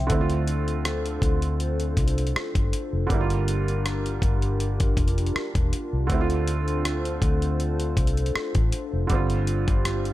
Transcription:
Already playing: F3 C4 E4 E5 G5
0.07 D2 D3 A3 D4 F4 A4 C5, kick, closed hi-hat
0.12 C4 E4
0.21 F4
0.30 closed hi-hat
0.47 closed hi-hat
0.68 closed hi-hat
0.85 cross-stick, closed hi-hat
1.06 closed hi-hat
1.22 D2, kick, closed hi-hat
1.42 closed hi-hat
1.60 closed hi-hat
1.80 closed hi-hat
1.97 C2, kick, closed hi-hat
2.08 closed hi-hat
2.18 closed hi-hat
2.27 closed hi-hat
2.36 cross-stick
2.55 G1, kick, closed hi-hat
2.73 closed hi-hat
2.93 F1
3.07 G1 D3 G3 G4 A#4, kick, closed hi-hat
3.12 A#3 E4
3.21 F4
3.30 closed hi-hat
3.48 closed hi-hat
3.68 closed hi-hat
3.86 cross-stick, closed hi-hat
4.06 closed hi-hat
4.22 G1, kick, closed hi-hat
4.42 closed hi-hat
4.60 closed hi-hat
4.80 kick, closed hi-hat
4.97 F1, kick, closed hi-hat
5.08 closed hi-hat
5.18 closed hi-hat
5.26 closed hi-hat
5.36 muted fingered electric bass stroke, cross-stick
5.55 E1, kick, closed hi-hat
5.73 closed hi-hat
5.93 C2
6.07 D2 D3 A3 A4 C5, kick, closed hi-hat
6.12 C4 E4
6.21 F4
6.30 closed hi-hat
6.47 closed hi-hat
6.68 closed hi-hat
6.85 cross-stick, closed hi-hat
7.05 closed hi-hat
7.22 D2, kick, closed hi-hat
7.42 closed hi-hat
7.60 closed hi-hat
7.80 closed hi-hat
7.97 C2, kick, closed hi-hat
8.07 closed hi-hat
8.17 closed hi-hat
8.26 closed hi-hat
8.35 muted fingered electric bass stroke, cross-stick
8.55 A1, kick, closed hi-hat
8.72 closed hi-hat
8.93 F1
9.07 G1 D3 G3 G4 C5, kick, closed hi-hat
9.12 C4 F4
9.30 closed hi-hat
9.47 closed hi-hat
9.68 kick, closed hi-hat
9.85 cross-stick, closed hi-hat
10.05 closed hi-hat

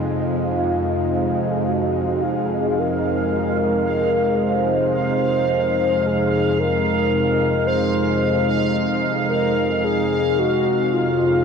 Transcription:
Already playing: F2 C3 G#3 D#4
0.03 F4 F5
1.68 F#4
2.23 G#4
2.79 A#4
4.43 C5
6.06 G#4
6.59 A#4
7.67 C5
9.28 A#4
9.84 G#4
10.39 F#4
10.93 F4

